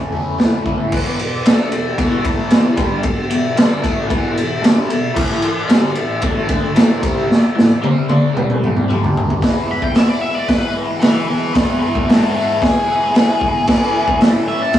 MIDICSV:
0, 0, Header, 1, 4, 480
1, 0, Start_track
1, 0, Tempo, 531915
1, 830, Time_signature, 4, 2, 24, 8
1, 13346, End_track
2, 0, Start_track
2, 0, Title_t, "Lead electric guitar"
2, 0, Program_c, 0, 29
2, 8765, Note_on_c, 0, 83, 86
2, 8865, Note_on_c, 0, 79, 95
2, 8868, Note_off_c, 0, 83, 0
2, 8978, Note_off_c, 0, 79, 0
2, 8988, Note_on_c, 0, 76, 81
2, 9109, Note_off_c, 0, 76, 0
2, 9109, Note_on_c, 0, 74, 87
2, 9215, Note_off_c, 0, 74, 0
2, 9215, Note_on_c, 0, 76, 85
2, 9337, Note_off_c, 0, 76, 0
2, 9337, Note_on_c, 0, 74, 81
2, 9461, Note_off_c, 0, 74, 0
2, 9461, Note_on_c, 0, 71, 113
2, 9694, Note_off_c, 0, 71, 0
2, 9926, Note_on_c, 0, 71, 80
2, 9941, Note_on_c, 0, 76, 109
2, 10170, Note_off_c, 0, 71, 0
2, 10174, Note_off_c, 0, 76, 0
2, 10181, Note_on_c, 0, 71, 84
2, 10187, Note_on_c, 0, 76, 90
2, 10401, Note_off_c, 0, 71, 0
2, 10412, Note_on_c, 0, 71, 80
2, 10418, Note_off_c, 0, 76, 0
2, 10427, Note_on_c, 0, 74, 83
2, 10627, Note_off_c, 0, 71, 0
2, 10638, Note_on_c, 0, 71, 76
2, 10641, Note_off_c, 0, 74, 0
2, 10652, Note_on_c, 0, 74, 87
2, 10873, Note_off_c, 0, 71, 0
2, 10891, Note_off_c, 0, 74, 0
2, 10908, Note_on_c, 0, 67, 66
2, 10912, Note_on_c, 0, 71, 81
2, 11131, Note_off_c, 0, 67, 0
2, 11140, Note_off_c, 0, 71, 0
2, 11150, Note_on_c, 0, 67, 75
2, 11159, Note_on_c, 0, 71, 88
2, 11371, Note_off_c, 0, 67, 0
2, 11385, Note_off_c, 0, 71, 0
2, 11403, Note_on_c, 0, 68, 97
2, 12804, Note_off_c, 0, 68, 0
2, 13069, Note_on_c, 0, 76, 109
2, 13187, Note_off_c, 0, 76, 0
2, 13194, Note_on_c, 0, 81, 86
2, 13346, Note_off_c, 0, 81, 0
2, 13346, End_track
3, 0, Start_track
3, 0, Title_t, "Overdriven electric guitar"
3, 0, Program_c, 1, 29
3, 0, Note_on_c, 1, 52, 74
3, 0, Note_on_c, 1, 57, 80
3, 0, Note_on_c, 1, 61, 84
3, 0, Note_on_c, 1, 64, 74
3, 101, Note_off_c, 1, 64, 0
3, 112, Note_on_c, 1, 64, 65
3, 118, Note_off_c, 1, 61, 0
3, 125, Note_off_c, 1, 57, 0
3, 129, Note_on_c, 1, 61, 66
3, 136, Note_on_c, 1, 57, 58
3, 340, Note_off_c, 1, 52, 0
3, 342, Note_on_c, 1, 45, 92
3, 348, Note_off_c, 1, 57, 0
3, 350, Note_on_c, 1, 52, 93
3, 353, Note_off_c, 1, 61, 0
3, 358, Note_on_c, 1, 57, 102
3, 362, Note_off_c, 1, 64, 0
3, 364, Note_on_c, 1, 61, 100
3, 373, Note_on_c, 1, 64, 105
3, 576, Note_off_c, 1, 64, 0
3, 587, Note_on_c, 1, 64, 76
3, 596, Note_off_c, 1, 61, 0
3, 605, Note_off_c, 1, 57, 0
3, 607, Note_on_c, 1, 61, 66
3, 616, Note_on_c, 1, 57, 54
3, 812, Note_off_c, 1, 45, 0
3, 814, Note_off_c, 1, 64, 0
3, 816, Note_off_c, 1, 52, 0
3, 824, Note_off_c, 1, 61, 0
3, 824, Note_on_c, 1, 40, 101
3, 829, Note_off_c, 1, 57, 0
3, 832, Note_on_c, 1, 47, 101
3, 836, Note_on_c, 1, 52, 101
3, 1060, Note_off_c, 1, 40, 0
3, 1064, Note_off_c, 1, 47, 0
3, 1066, Note_off_c, 1, 52, 0
3, 1072, Note_on_c, 1, 40, 65
3, 1080, Note_on_c, 1, 47, 70
3, 1263, Note_off_c, 1, 40, 0
3, 1267, Note_off_c, 1, 47, 0
3, 1305, Note_on_c, 1, 50, 106
3, 1312, Note_on_c, 1, 57, 100
3, 1315, Note_on_c, 1, 62, 104
3, 1540, Note_off_c, 1, 50, 0
3, 1544, Note_off_c, 1, 57, 0
3, 1545, Note_off_c, 1, 62, 0
3, 1546, Note_on_c, 1, 40, 57
3, 1555, Note_on_c, 1, 47, 63
3, 1740, Note_off_c, 1, 40, 0
3, 1744, Note_off_c, 1, 47, 0
3, 1787, Note_on_c, 1, 40, 92
3, 1795, Note_on_c, 1, 47, 106
3, 1801, Note_on_c, 1, 52, 99
3, 2021, Note_off_c, 1, 40, 0
3, 2021, Note_off_c, 1, 52, 0
3, 2022, Note_off_c, 1, 47, 0
3, 2026, Note_on_c, 1, 45, 84
3, 2032, Note_on_c, 1, 52, 87
3, 2038, Note_on_c, 1, 57, 96
3, 2260, Note_off_c, 1, 45, 0
3, 2263, Note_off_c, 1, 52, 0
3, 2265, Note_on_c, 1, 40, 102
3, 2266, Note_off_c, 1, 57, 0
3, 2275, Note_on_c, 1, 47, 102
3, 2275, Note_on_c, 1, 52, 113
3, 2492, Note_off_c, 1, 40, 0
3, 2496, Note_on_c, 1, 43, 109
3, 2501, Note_off_c, 1, 47, 0
3, 2503, Note_off_c, 1, 52, 0
3, 2505, Note_on_c, 1, 50, 108
3, 2507, Note_on_c, 1, 55, 118
3, 2734, Note_off_c, 1, 43, 0
3, 2739, Note_off_c, 1, 50, 0
3, 2740, Note_off_c, 1, 55, 0
3, 2979, Note_on_c, 1, 40, 64
3, 2985, Note_on_c, 1, 47, 77
3, 3175, Note_off_c, 1, 40, 0
3, 3178, Note_off_c, 1, 47, 0
3, 3209, Note_on_c, 1, 43, 97
3, 3214, Note_on_c, 1, 50, 94
3, 3216, Note_on_c, 1, 55, 100
3, 3439, Note_off_c, 1, 50, 0
3, 3443, Note_on_c, 1, 45, 98
3, 3444, Note_off_c, 1, 55, 0
3, 3447, Note_on_c, 1, 52, 98
3, 3450, Note_off_c, 1, 43, 0
3, 3453, Note_on_c, 1, 57, 108
3, 3680, Note_on_c, 1, 40, 93
3, 3687, Note_off_c, 1, 45, 0
3, 3689, Note_off_c, 1, 52, 0
3, 3692, Note_off_c, 1, 57, 0
3, 3696, Note_on_c, 1, 47, 95
3, 3698, Note_on_c, 1, 52, 110
3, 3913, Note_off_c, 1, 40, 0
3, 3915, Note_off_c, 1, 47, 0
3, 3924, Note_on_c, 1, 40, 62
3, 3926, Note_on_c, 1, 47, 66
3, 3934, Note_off_c, 1, 52, 0
3, 4126, Note_off_c, 1, 40, 0
3, 4127, Note_off_c, 1, 47, 0
3, 4165, Note_on_c, 1, 43, 94
3, 4172, Note_on_c, 1, 50, 96
3, 4178, Note_on_c, 1, 55, 116
3, 4404, Note_off_c, 1, 43, 0
3, 4408, Note_on_c, 1, 40, 68
3, 4410, Note_off_c, 1, 50, 0
3, 4414, Note_off_c, 1, 55, 0
3, 4415, Note_on_c, 1, 47, 78
3, 4607, Note_off_c, 1, 40, 0
3, 4611, Note_off_c, 1, 47, 0
3, 4645, Note_on_c, 1, 45, 110
3, 4648, Note_on_c, 1, 52, 109
3, 4658, Note_on_c, 1, 57, 103
3, 4878, Note_off_c, 1, 45, 0
3, 4884, Note_off_c, 1, 52, 0
3, 4889, Note_on_c, 1, 45, 67
3, 4893, Note_off_c, 1, 57, 0
3, 4895, Note_on_c, 1, 52, 75
3, 5087, Note_off_c, 1, 45, 0
3, 5090, Note_off_c, 1, 52, 0
3, 5125, Note_on_c, 1, 43, 100
3, 5135, Note_on_c, 1, 50, 100
3, 5143, Note_on_c, 1, 55, 107
3, 5364, Note_off_c, 1, 50, 0
3, 5366, Note_off_c, 1, 43, 0
3, 5367, Note_on_c, 1, 45, 68
3, 5369, Note_off_c, 1, 55, 0
3, 5373, Note_on_c, 1, 52, 63
3, 5566, Note_off_c, 1, 45, 0
3, 5569, Note_off_c, 1, 52, 0
3, 5607, Note_on_c, 1, 45, 92
3, 5609, Note_on_c, 1, 52, 107
3, 5619, Note_on_c, 1, 57, 113
3, 5833, Note_off_c, 1, 45, 0
3, 5837, Note_on_c, 1, 50, 83
3, 5838, Note_off_c, 1, 57, 0
3, 5845, Note_off_c, 1, 52, 0
3, 5849, Note_on_c, 1, 57, 88
3, 5854, Note_on_c, 1, 62, 97
3, 6081, Note_off_c, 1, 50, 0
3, 6085, Note_on_c, 1, 45, 91
3, 6087, Note_off_c, 1, 57, 0
3, 6089, Note_off_c, 1, 62, 0
3, 6090, Note_on_c, 1, 52, 107
3, 6098, Note_on_c, 1, 57, 104
3, 6325, Note_off_c, 1, 45, 0
3, 6327, Note_off_c, 1, 52, 0
3, 6331, Note_off_c, 1, 57, 0
3, 6333, Note_on_c, 1, 48, 91
3, 6340, Note_on_c, 1, 55, 108
3, 6345, Note_on_c, 1, 60, 102
3, 6568, Note_off_c, 1, 48, 0
3, 6572, Note_off_c, 1, 55, 0
3, 6575, Note_off_c, 1, 60, 0
3, 6818, Note_on_c, 1, 45, 61
3, 6820, Note_on_c, 1, 52, 72
3, 7010, Note_off_c, 1, 45, 0
3, 7011, Note_off_c, 1, 52, 0
3, 7054, Note_on_c, 1, 48, 108
3, 7062, Note_on_c, 1, 55, 100
3, 7067, Note_on_c, 1, 60, 99
3, 7289, Note_off_c, 1, 48, 0
3, 7292, Note_off_c, 1, 55, 0
3, 7295, Note_off_c, 1, 60, 0
3, 7295, Note_on_c, 1, 50, 89
3, 7305, Note_on_c, 1, 57, 82
3, 7310, Note_on_c, 1, 62, 93
3, 7535, Note_off_c, 1, 50, 0
3, 7535, Note_on_c, 1, 48, 99
3, 7539, Note_off_c, 1, 57, 0
3, 7539, Note_on_c, 1, 55, 104
3, 7540, Note_off_c, 1, 62, 0
3, 7540, Note_on_c, 1, 60, 104
3, 8009, Note_off_c, 1, 48, 0
3, 8011, Note_off_c, 1, 55, 0
3, 8012, Note_off_c, 1, 60, 0
3, 8014, Note_on_c, 1, 43, 89
3, 8025, Note_on_c, 1, 50, 87
3, 8026, Note_on_c, 1, 55, 103
3, 8489, Note_off_c, 1, 43, 0
3, 8492, Note_off_c, 1, 50, 0
3, 8493, Note_on_c, 1, 40, 89
3, 8495, Note_off_c, 1, 55, 0
3, 8496, Note_on_c, 1, 47, 97
3, 8507, Note_on_c, 1, 52, 100
3, 8513, Note_on_c, 1, 56, 105
3, 8521, Note_on_c, 1, 59, 105
3, 8521, Note_on_c, 1, 64, 107
3, 8727, Note_off_c, 1, 64, 0
3, 8730, Note_on_c, 1, 64, 80
3, 8737, Note_off_c, 1, 59, 0
3, 8740, Note_on_c, 1, 59, 68
3, 8746, Note_off_c, 1, 56, 0
3, 8750, Note_on_c, 1, 56, 64
3, 8756, Note_off_c, 1, 52, 0
3, 8760, Note_on_c, 1, 52, 61
3, 8965, Note_off_c, 1, 52, 0
3, 8969, Note_on_c, 1, 52, 77
3, 8977, Note_off_c, 1, 47, 0
3, 8980, Note_off_c, 1, 56, 0
3, 8984, Note_on_c, 1, 56, 77
3, 8987, Note_off_c, 1, 59, 0
3, 8990, Note_on_c, 1, 59, 91
3, 8996, Note_off_c, 1, 64, 0
3, 9000, Note_on_c, 1, 64, 86
3, 9692, Note_off_c, 1, 64, 0
3, 9695, Note_on_c, 1, 64, 61
3, 9700, Note_off_c, 1, 59, 0
3, 9704, Note_off_c, 1, 56, 0
3, 9711, Note_on_c, 1, 59, 60
3, 9715, Note_on_c, 1, 56, 66
3, 9720, Note_off_c, 1, 52, 0
3, 9723, Note_on_c, 1, 52, 64
3, 9916, Note_off_c, 1, 40, 0
3, 9920, Note_on_c, 1, 40, 82
3, 9931, Note_off_c, 1, 56, 0
3, 9934, Note_off_c, 1, 52, 0
3, 9934, Note_on_c, 1, 47, 88
3, 9936, Note_off_c, 1, 59, 0
3, 9937, Note_on_c, 1, 52, 99
3, 9942, Note_on_c, 1, 56, 91
3, 9947, Note_on_c, 1, 59, 92
3, 9950, Note_off_c, 1, 64, 0
3, 9954, Note_on_c, 1, 64, 104
3, 10169, Note_off_c, 1, 64, 0
3, 10172, Note_off_c, 1, 59, 0
3, 10173, Note_on_c, 1, 64, 77
3, 10182, Note_off_c, 1, 56, 0
3, 10183, Note_on_c, 1, 59, 68
3, 10193, Note_on_c, 1, 56, 69
3, 10198, Note_off_c, 1, 52, 0
3, 10202, Note_on_c, 1, 52, 60
3, 10390, Note_off_c, 1, 40, 0
3, 10395, Note_off_c, 1, 47, 0
3, 10401, Note_on_c, 1, 40, 96
3, 10406, Note_on_c, 1, 47, 97
3, 10412, Note_off_c, 1, 56, 0
3, 10416, Note_off_c, 1, 52, 0
3, 10420, Note_off_c, 1, 59, 0
3, 10420, Note_on_c, 1, 52, 102
3, 10423, Note_on_c, 1, 56, 108
3, 10431, Note_on_c, 1, 59, 101
3, 10432, Note_off_c, 1, 64, 0
3, 10435, Note_on_c, 1, 64, 101
3, 10650, Note_off_c, 1, 64, 0
3, 10654, Note_on_c, 1, 64, 81
3, 10655, Note_off_c, 1, 59, 0
3, 10661, Note_off_c, 1, 56, 0
3, 10666, Note_on_c, 1, 59, 72
3, 10672, Note_on_c, 1, 56, 62
3, 10679, Note_off_c, 1, 52, 0
3, 10682, Note_on_c, 1, 52, 67
3, 10883, Note_off_c, 1, 52, 0
3, 10886, Note_on_c, 1, 52, 77
3, 10893, Note_off_c, 1, 40, 0
3, 10893, Note_off_c, 1, 56, 0
3, 10896, Note_off_c, 1, 47, 0
3, 10896, Note_off_c, 1, 59, 0
3, 10903, Note_on_c, 1, 56, 84
3, 10907, Note_on_c, 1, 59, 83
3, 10911, Note_off_c, 1, 64, 0
3, 10915, Note_on_c, 1, 64, 92
3, 11613, Note_off_c, 1, 64, 0
3, 11616, Note_off_c, 1, 59, 0
3, 11617, Note_on_c, 1, 64, 64
3, 11627, Note_on_c, 1, 59, 59
3, 11628, Note_off_c, 1, 56, 0
3, 11639, Note_on_c, 1, 56, 59
3, 11650, Note_off_c, 1, 52, 0
3, 11654, Note_on_c, 1, 52, 56
3, 11853, Note_on_c, 1, 40, 93
3, 11863, Note_off_c, 1, 52, 0
3, 11864, Note_off_c, 1, 56, 0
3, 11864, Note_on_c, 1, 47, 92
3, 11867, Note_on_c, 1, 52, 111
3, 11873, Note_off_c, 1, 59, 0
3, 11875, Note_on_c, 1, 56, 99
3, 11882, Note_off_c, 1, 64, 0
3, 11884, Note_on_c, 1, 59, 104
3, 11886, Note_on_c, 1, 64, 107
3, 12099, Note_off_c, 1, 64, 0
3, 12102, Note_on_c, 1, 64, 83
3, 12104, Note_off_c, 1, 59, 0
3, 12108, Note_off_c, 1, 56, 0
3, 12115, Note_on_c, 1, 59, 81
3, 12119, Note_on_c, 1, 56, 64
3, 12131, Note_off_c, 1, 52, 0
3, 12135, Note_on_c, 1, 52, 65
3, 12328, Note_off_c, 1, 40, 0
3, 12333, Note_off_c, 1, 47, 0
3, 12338, Note_off_c, 1, 59, 0
3, 12340, Note_off_c, 1, 56, 0
3, 12340, Note_on_c, 1, 45, 90
3, 12347, Note_off_c, 1, 52, 0
3, 12351, Note_on_c, 1, 52, 95
3, 12356, Note_on_c, 1, 57, 93
3, 12365, Note_off_c, 1, 64, 0
3, 12367, Note_on_c, 1, 61, 108
3, 12369, Note_on_c, 1, 64, 104
3, 12578, Note_off_c, 1, 64, 0
3, 12582, Note_on_c, 1, 64, 69
3, 12594, Note_off_c, 1, 61, 0
3, 12598, Note_on_c, 1, 61, 77
3, 12612, Note_off_c, 1, 57, 0
3, 12616, Note_on_c, 1, 57, 56
3, 12828, Note_off_c, 1, 52, 0
3, 12832, Note_on_c, 1, 52, 74
3, 12840, Note_off_c, 1, 57, 0
3, 12844, Note_on_c, 1, 57, 81
3, 12849, Note_off_c, 1, 61, 0
3, 12852, Note_on_c, 1, 61, 80
3, 12864, Note_off_c, 1, 64, 0
3, 12868, Note_on_c, 1, 64, 89
3, 13346, Note_off_c, 1, 45, 0
3, 13346, Note_off_c, 1, 52, 0
3, 13346, Note_off_c, 1, 57, 0
3, 13346, Note_off_c, 1, 61, 0
3, 13346, Note_off_c, 1, 64, 0
3, 13346, End_track
4, 0, Start_track
4, 0, Title_t, "Drums"
4, 110, Note_on_c, 9, 43, 56
4, 201, Note_off_c, 9, 43, 0
4, 347, Note_on_c, 9, 43, 75
4, 359, Note_on_c, 9, 38, 108
4, 437, Note_off_c, 9, 43, 0
4, 449, Note_off_c, 9, 38, 0
4, 593, Note_on_c, 9, 36, 84
4, 593, Note_on_c, 9, 43, 65
4, 683, Note_off_c, 9, 36, 0
4, 684, Note_off_c, 9, 43, 0
4, 830, Note_on_c, 9, 49, 116
4, 834, Note_on_c, 9, 36, 106
4, 920, Note_off_c, 9, 49, 0
4, 924, Note_off_c, 9, 36, 0
4, 1078, Note_on_c, 9, 51, 65
4, 1168, Note_off_c, 9, 51, 0
4, 1313, Note_on_c, 9, 51, 96
4, 1325, Note_on_c, 9, 38, 113
4, 1403, Note_off_c, 9, 51, 0
4, 1415, Note_off_c, 9, 38, 0
4, 1550, Note_on_c, 9, 51, 75
4, 1640, Note_off_c, 9, 51, 0
4, 1789, Note_on_c, 9, 36, 96
4, 1791, Note_on_c, 9, 51, 99
4, 1880, Note_off_c, 9, 36, 0
4, 1881, Note_off_c, 9, 51, 0
4, 2027, Note_on_c, 9, 36, 108
4, 2030, Note_on_c, 9, 51, 76
4, 2118, Note_off_c, 9, 36, 0
4, 2120, Note_off_c, 9, 51, 0
4, 2260, Note_on_c, 9, 51, 97
4, 2272, Note_on_c, 9, 38, 107
4, 2351, Note_off_c, 9, 51, 0
4, 2362, Note_off_c, 9, 38, 0
4, 2502, Note_on_c, 9, 51, 83
4, 2505, Note_on_c, 9, 36, 110
4, 2593, Note_off_c, 9, 51, 0
4, 2595, Note_off_c, 9, 36, 0
4, 2735, Note_on_c, 9, 51, 99
4, 2743, Note_on_c, 9, 36, 101
4, 2826, Note_off_c, 9, 51, 0
4, 2833, Note_off_c, 9, 36, 0
4, 2983, Note_on_c, 9, 51, 74
4, 3073, Note_off_c, 9, 51, 0
4, 3223, Note_on_c, 9, 51, 103
4, 3235, Note_on_c, 9, 38, 119
4, 3314, Note_off_c, 9, 51, 0
4, 3325, Note_off_c, 9, 38, 0
4, 3463, Note_on_c, 9, 36, 102
4, 3468, Note_on_c, 9, 51, 74
4, 3554, Note_off_c, 9, 36, 0
4, 3558, Note_off_c, 9, 51, 0
4, 3703, Note_on_c, 9, 36, 108
4, 3707, Note_on_c, 9, 51, 97
4, 3794, Note_off_c, 9, 36, 0
4, 3797, Note_off_c, 9, 51, 0
4, 3948, Note_on_c, 9, 51, 77
4, 4038, Note_off_c, 9, 51, 0
4, 4187, Note_on_c, 9, 51, 93
4, 4199, Note_on_c, 9, 38, 108
4, 4278, Note_off_c, 9, 51, 0
4, 4289, Note_off_c, 9, 38, 0
4, 4424, Note_on_c, 9, 51, 75
4, 4514, Note_off_c, 9, 51, 0
4, 4660, Note_on_c, 9, 36, 112
4, 4660, Note_on_c, 9, 57, 100
4, 4750, Note_off_c, 9, 36, 0
4, 4750, Note_off_c, 9, 57, 0
4, 4892, Note_on_c, 9, 51, 64
4, 4982, Note_off_c, 9, 51, 0
4, 5138, Note_on_c, 9, 51, 103
4, 5149, Note_on_c, 9, 38, 111
4, 5228, Note_off_c, 9, 51, 0
4, 5240, Note_off_c, 9, 38, 0
4, 5372, Note_on_c, 9, 51, 67
4, 5462, Note_off_c, 9, 51, 0
4, 5610, Note_on_c, 9, 51, 96
4, 5620, Note_on_c, 9, 36, 109
4, 5700, Note_off_c, 9, 51, 0
4, 5710, Note_off_c, 9, 36, 0
4, 5854, Note_on_c, 9, 51, 75
4, 5859, Note_on_c, 9, 36, 95
4, 5944, Note_off_c, 9, 51, 0
4, 5949, Note_off_c, 9, 36, 0
4, 6100, Note_on_c, 9, 51, 105
4, 6111, Note_on_c, 9, 38, 100
4, 6190, Note_off_c, 9, 51, 0
4, 6201, Note_off_c, 9, 38, 0
4, 6344, Note_on_c, 9, 36, 104
4, 6345, Note_on_c, 9, 51, 78
4, 6434, Note_off_c, 9, 36, 0
4, 6435, Note_off_c, 9, 51, 0
4, 6599, Note_on_c, 9, 38, 65
4, 6690, Note_off_c, 9, 38, 0
4, 6846, Note_on_c, 9, 38, 70
4, 6936, Note_off_c, 9, 38, 0
4, 7071, Note_on_c, 9, 48, 73
4, 7161, Note_off_c, 9, 48, 0
4, 7305, Note_on_c, 9, 48, 83
4, 7395, Note_off_c, 9, 48, 0
4, 7551, Note_on_c, 9, 47, 87
4, 7642, Note_off_c, 9, 47, 0
4, 7670, Note_on_c, 9, 47, 80
4, 7760, Note_off_c, 9, 47, 0
4, 7795, Note_on_c, 9, 45, 84
4, 7885, Note_off_c, 9, 45, 0
4, 7911, Note_on_c, 9, 45, 80
4, 8001, Note_off_c, 9, 45, 0
4, 8036, Note_on_c, 9, 45, 95
4, 8126, Note_off_c, 9, 45, 0
4, 8160, Note_on_c, 9, 43, 91
4, 8250, Note_off_c, 9, 43, 0
4, 8278, Note_on_c, 9, 43, 103
4, 8369, Note_off_c, 9, 43, 0
4, 8395, Note_on_c, 9, 43, 105
4, 8485, Note_off_c, 9, 43, 0
4, 8503, Note_on_c, 9, 36, 106
4, 8505, Note_on_c, 9, 46, 55
4, 8516, Note_on_c, 9, 38, 115
4, 8594, Note_off_c, 9, 36, 0
4, 8595, Note_off_c, 9, 46, 0
4, 8607, Note_off_c, 9, 38, 0
4, 8862, Note_on_c, 9, 36, 93
4, 8952, Note_off_c, 9, 36, 0
4, 8975, Note_on_c, 9, 46, 56
4, 8987, Note_on_c, 9, 38, 123
4, 9066, Note_off_c, 9, 46, 0
4, 9077, Note_off_c, 9, 38, 0
4, 9462, Note_on_c, 9, 46, 62
4, 9463, Note_on_c, 9, 36, 106
4, 9473, Note_on_c, 9, 38, 116
4, 9552, Note_off_c, 9, 46, 0
4, 9553, Note_off_c, 9, 36, 0
4, 9564, Note_off_c, 9, 38, 0
4, 9940, Note_on_c, 9, 46, 60
4, 9951, Note_on_c, 9, 38, 96
4, 10030, Note_off_c, 9, 46, 0
4, 10042, Note_off_c, 9, 38, 0
4, 10425, Note_on_c, 9, 46, 58
4, 10427, Note_on_c, 9, 36, 121
4, 10437, Note_on_c, 9, 38, 115
4, 10515, Note_off_c, 9, 46, 0
4, 10517, Note_off_c, 9, 36, 0
4, 10527, Note_off_c, 9, 38, 0
4, 10786, Note_on_c, 9, 36, 102
4, 10877, Note_off_c, 9, 36, 0
4, 10912, Note_on_c, 9, 46, 65
4, 10924, Note_on_c, 9, 38, 105
4, 11003, Note_off_c, 9, 46, 0
4, 11014, Note_off_c, 9, 38, 0
4, 11387, Note_on_c, 9, 36, 111
4, 11390, Note_on_c, 9, 46, 66
4, 11401, Note_on_c, 9, 38, 114
4, 11478, Note_off_c, 9, 36, 0
4, 11480, Note_off_c, 9, 46, 0
4, 11492, Note_off_c, 9, 38, 0
4, 11866, Note_on_c, 9, 46, 65
4, 11877, Note_on_c, 9, 38, 114
4, 11956, Note_off_c, 9, 46, 0
4, 11968, Note_off_c, 9, 38, 0
4, 12104, Note_on_c, 9, 36, 84
4, 12194, Note_off_c, 9, 36, 0
4, 12340, Note_on_c, 9, 49, 102
4, 12344, Note_on_c, 9, 36, 107
4, 12351, Note_on_c, 9, 38, 101
4, 12430, Note_off_c, 9, 49, 0
4, 12434, Note_off_c, 9, 36, 0
4, 12442, Note_off_c, 9, 38, 0
4, 12703, Note_on_c, 9, 36, 91
4, 12793, Note_off_c, 9, 36, 0
4, 12819, Note_on_c, 9, 46, 58
4, 12831, Note_on_c, 9, 38, 100
4, 12910, Note_off_c, 9, 46, 0
4, 12921, Note_off_c, 9, 38, 0
4, 13293, Note_on_c, 9, 46, 59
4, 13303, Note_on_c, 9, 36, 116
4, 13305, Note_on_c, 9, 38, 109
4, 13346, Note_off_c, 9, 36, 0
4, 13346, Note_off_c, 9, 38, 0
4, 13346, Note_off_c, 9, 46, 0
4, 13346, End_track
0, 0, End_of_file